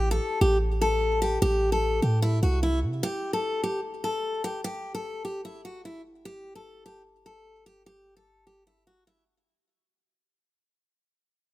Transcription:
Already playing: A1
0.11 A4
0.41 A1 G4
0.81 A4
1.22 G4
1.42 A1 G4
1.72 A4
2.02 A2 G4
2.22 E4
2.43 C2 F#4
2.63 E4
2.83 C3
3.03 G4
3.33 A4
3.64 G4
4.04 A4
4.44 G4
4.64 G4
4.95 A4
5.25 G4
5.45 E4
5.65 F#4
5.85 E4
6.25 G4
6.55 A4
6.86 G4
7.26 A4
7.66 G4
7.86 G4
8.17 A4
8.47 G4
8.67 E4
8.87 F#4
9.07 E4

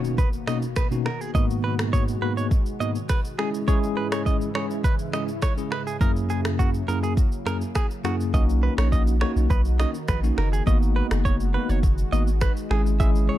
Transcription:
Already playing: B2 D#3 A#3 C#4 D#4 F#4, impact
0.04 shaker
0.18 B4, kick, shaker
0.33 shaker
0.47 B2 A#3 C#4 D#4 F#4 D#5, finger snap, cross-stick, shaker
0.62 shaker
0.76 B4, finger snap, kick, cross-stick, shaker
0.91 B2 A#3 C#4 D#4 F#4, shaker
1.06 A#4, finger snap, cross-stick
1.21 G#4, shaker
1.34 G#2 G#3 A#3 B3 D#4 F#4 D#5, kick, shaker
1.50 shaker
1.64 B4
1.79 finger snap, cross-stick, shaker
1.93 C#5, kick, shaker
2.08 shaker
2.22 G#2 A#3 B3 D#4 F#4 B4
2.37 C#5, shaker
2.51 kick, shaker
2.66 shaker
2.80 G#2 A#3 B3 D#4 F#4 D#5, shaker
2.95 shaker
3.09 B4, finger snap, kick, cross-stick, shaker
3.25 shaker
3.38 G#2 C#3 E3 G#3 C#4 E4 G#4, finger snap, cross-stick
3.54 shaker
3.68 G#3 C#4 E4 G#4 C#5, kick, shaker
3.83 shaker
3.97 B4
4.12 C#5, finger snap, cross-stick, shaker
4.26 D#5, kick, shaker
4.41 shaker
4.55 G#3 C#4 E4 G#4 C#5, finger snap, cross-stick
4.71 shaker
4.84 B4, kick, shaker
4.99 shaker
5.13 G#3 C#4 E4 G#4 D#5, finger snap, cross-stick, shaker
5.28 shaker
5.42 C#5, finger snap, kick, cross-stick, shaker
5.58 G#3 C#4 E4 G#4, shaker
5.72 B4, finger snap, cross-stick
5.87 G#4, shaker
6.01 F#2 F#3 A#3 C#4 E4 G#4 A#4, kick, shaker
6.16 shaker
6.30 G#4, shaker
6.45 finger snap, cross-stick, shaker
6.59 F#4, kick, shaker
6.74 shaker
6.88 F#2 A#3 C#4 E4 G#4 A#4, shaker
7.03 G#4, shaker
7.17 kick, shaker
7.32 shaker
7.46 F#2 A#3 C#4 E4 G#4 A#4, finger snap, cross-stick, shaker
7.61 shaker
7.75 G#4, finger snap, kick, cross-stick, shaker
7.91 shaker
8.04 F#2 A#3 C#4 E4 F#4 G#4, finger snap, cross-stick, shaker
8.20 shaker
8.34 B1 D#3 A#3 C#4 D#4 F#4 D#5, kick, shaker
8.49 shaker
8.63 B4
8.78 A#1 C#5, finger snap, cross-stick, shaker
8.92 D#5, kick, shaker
9.07 shaker
9.21 A#3 C#4 D#4 F#4 C#5, finger snap, cross-stick
9.36 B1, shaker
9.50 B1 B4, kick, shaker
9.65 shaker
9.79 A#3 C#4 D#4 F#4 D#5, finger snap, cross-stick, shaker
9.94 shaker
10.08 A#1 B4, finger snap, kick, cross-stick, shaker
10.23 A#3 C#4 D#4 F#4, shaker
10.38 F#1 A#4, finger snap, cross-stick
10.53 G#4, shaker
10.67 G#1 G#3 A#3 B3 D#4 F#4 D#5, kick, shaker
10.82 shaker
10.96 B4
11.11 F#1, finger snap, cross-stick, shaker
11.25 C#5, kick, shaker
11.40 shaker
11.54 A#3 B3 D#4 F#4 B4
11.69 F#1 C#5, shaker
11.83 kick, shaker
11.98 shaker
12.12 G#1 A#3 B3 D#4 F#4 D#5, shaker
12.27 shaker
12.41 B4, finger snap, kick, cross-stick, shaker
12.57 shaker
12.71 G#1 C#3 E3 G#3 C#4 E4 G#4, finger snap, cross-stick
12.86 shaker
13.00 G#3 C#4 E4 G#4 E5, kick, shaker
13.15 shaker
13.29 C#5

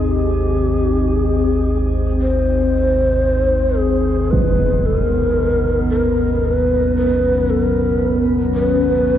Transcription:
Already playing: G#1 D#2 C4 D#4 G#4 C5 D#5
0.11 G4
1.16 G#4
2.21 C5
3.80 G#4
4.31 B3 B4, impact
4.86 A4
4.99 A#4
5.38 C#4
5.90 A#4
6.05 F#3
6.44 B4
6.96 B4
7.13 C#5
7.50 A4
7.62 A#4
8.55 B4

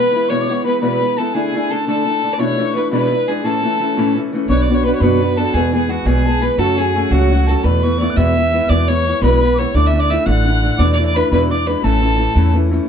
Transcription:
Already playing: E3 G#3 B3 B4 B5
0.00 E4
0.12 E3 G#3 B3 E4
0.28 E2 B2 E3 G#3 B3 E4 C#5 C#6
0.41 D6
0.48 E3 G#3 B3 E4
0.52 C#6
0.64 E3 G#3 B3 E4 B4 B5
0.80 E2 B2 E3 G#3 B3 E4 B4 B5
1.01 E3 G#3 B3 E4
1.17 E3 G#3 B3 E4 A4 A5
1.33 D3 A3 D4 E4 G#4 G#5
1.53 D3 A3 D4 E4 G#5
1.70 D3 A3 D4 E4 A4 A5
1.87 D3 A3 D4 E4 A4 A5
2.06 D3 A3 D4 E4
2.23 D3 A3 D4 E4
2.33 D5
2.38 E2 B2 E3 A3 D4 E4 C#5 C#6
2.58 E3 A3 D4 E4
2.74 E3 A3 D4 E4 B4
2.91 E2 B2 E3 G#3 D4 E4 B4 B5
3.11 E3 G#3 D4 E4
3.27 E3 G#3 D4 E4 G#4
3.44 A2 E3 A3 C#4 E4 A4 A5
3.63 E3 A3 C#4 E4
3.79 E3 A3 C#4 E4
3.97 A2 E3 A3 C#4 E4
4.15 E3 A3 C#4 E4
4.33 E3 A3 C#4 E4
4.49 B1 B2 F#3 B3 D4 F#4 C#5 C#6
4.62 D5
4.69 B3 D4 F#4 C#5
4.74 C#5 C#6
4.84 B3 D4 F#4 B4 C#5 B5
4.95 C#5 C#6
5.00 F#2 B2 F#3 B3 D4 F#4 B4 C#5 B5
5.21 B3 D4 F#4 C#5
5.36 B3 D4 F#4 A4 C#5 A5
5.54 E2 B2 E3 G#3 B3 G#4 G#5
5.73 E3 G#3 B3 G#4 G#5
5.88 E3 G#3 B3 F#4 G#4 F#5
6.05 B1 E2 B2 E3 G#3 B3 G#4 G#5
6.25 E3 G#3 B3 G#4 A5
6.40 E3 G#3 B3 G#4 B4 B5
6.57 F#2 C#3 F#3 A3 C#4 F#4 A4 A5
6.69 A5
6.76 F#3 A3 C#4 F#4 G#4 G#5
6.95 F#3 A3 C#4 F#4
7.04 G#5
7.11 C#2 F#2 C#3 F#3 A3 C#4 F#4 F#5
7.31 F#3 A3 C#4 F#4
7.47 F#3 A3 C#4 F#4 A4 A5
7.63 E2 B2 E3 A3 B3 E4 B4 B5
7.83 E3 A3 B3 E4 C#6
7.99 E3 A3 B3 E4 D5
8.10 F#6
8.16 E2 B2 E3 G#3 B3 E4 E5 E6
8.36 E3 B3 E4
8.52 E3 G#3 B3 E4
8.64 E6
8.69 E2 B2 E3 G#3 B3 E4 D5 D6
8.88 E3 G#3 B3 E4 C#5 C#6
9.05 E3 G#3 B3 E4
9.22 B1 E2 B2 E3 G#3 B3 E4 B4 B5
9.42 E3 G#3 B3 E4
9.54 E3 C#6 D6
9.59 G#3 B3 E4 C#5
9.74 D2 D3 A3 D4 E4 D5 D6
9.87 E5
9.93 D3 A3 D4 E4
9.99 D5 D6
10.09 D3 A3 D4 E4 E5 E6
10.26 A1 D3 A3 D4 E4 F#5 F#6
10.45 D3 A3 D4 E4
10.62 D3 A3 D4 E4
10.78 E2 B2 E3 A3 D4 E4 D5 D6
10.92 D5
10.98 E3 A3 D4 E4
11.05 D5
11.14 E3 A3 D4 E4 B4 B5
11.30 E2 B2 E3 G#3 D4 E4 B4 B5
11.49 E3 G#3 D4 E4 D5 D6
11.66 E3 G#3 D4 E4 B4 B5
11.82 A1 A2 E3 A3 C#4 E4 A4 A5
12.01 E3 A3 C#4 E4
12.16 E3 A3 C#4 E4
12.35 E2 A2 E3 A3 C#4 E4
12.54 E3 A3 C#4 E4
12.70 E3 A3 C#4 E4

